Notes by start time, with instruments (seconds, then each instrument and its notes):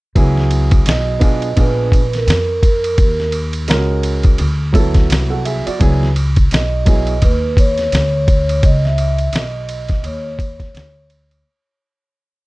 0.15 upright bass C#2, upright piano F#3 B3 E4 G#4, kick, ride
0.37 snare
0.51 ride
0.71 kick, ride
0.86 upright bass B1, vibraphone D#5, snare, hi-hat pedal, ride
1.19 upright piano B3 D4 F4 G#4, kick, ride
1.42 ride
1.56 upright bass A#1, upright piano B3 D4 F4 G#4, vibraphone B4, kick, ride
1.92 kick, ride
2.13 vibraphone A#4, snare, ride
2.27 upright bass F2, snare, hi-hat pedal, ride
2.63 vibraphone A#4, kick, ride
2.84 ride
2.98 upright bass D#2, kick, ride
3.20 snare
3.32 ride
3.53 ride
3.68 upright bass C#2, upright piano G#3 C#4 F4 A#4, snare, hi-hat pedal, ride
3.76 upright piano F#4
4.03 ride
4.23 kick, ride
4.38 upright bass D2, ride
4.73 upright piano F#3 B3 E4 A4, kick, ride
4.94 kick, snare, ride
5.10 upright bass C2, snare, hi-hat pedal, ride
5.30 upright piano A4 F#5
5.45 upright piano G#4 E5, ride
5.66 upright piano F#4 D5, muted upright bass stroke, ride
5.79 upright bass C#2, upright piano F#3 B3 E4 G#4, kick, ride
6.03 snare
6.16 ride
6.36 kick, ride
6.51 upright bass B1, vibraphone D#5, snare, hi-hat pedal, ride
6.85 upright piano F#3 B3 E4 G#4, kick, ride
7.07 ride
7.22 upright bass D#2, vibraphone B4, kick, ride
7.57 vibraphone C#5, kick, ride
7.78 snare, ride
7.92 upright bass D2, snare, hi-hat pedal, ride
8.28 kick, ride
8.49 ride
8.63 upright bass C#2, vibraphone D#5, kick, ride
8.85 vibraphone E5, snare
8.98 ride
9.18 ride
9.33 upright bass B1, vibraphone D#5, snare, hi-hat pedal, ride
9.69 ride
9.88 kick, snare, ride
10.03 upright bass D#2, vibraphone C#5, ride
10.39 kick, ride
10.60 kick, snare, ride
10.74 upright bass D2, snare, hi-hat pedal, ride
11.10 ride
11.31 ride